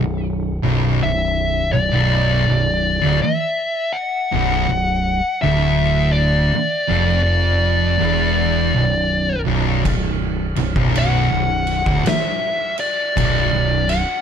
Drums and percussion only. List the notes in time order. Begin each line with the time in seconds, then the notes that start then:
9.85 kick, crash
10.56 crash
10.76 kick
10.95 crash
11.67 crash
11.86 kick
12.06 snare, crash
12.78 crash
13.17 kick, crash
13.89 snare, crash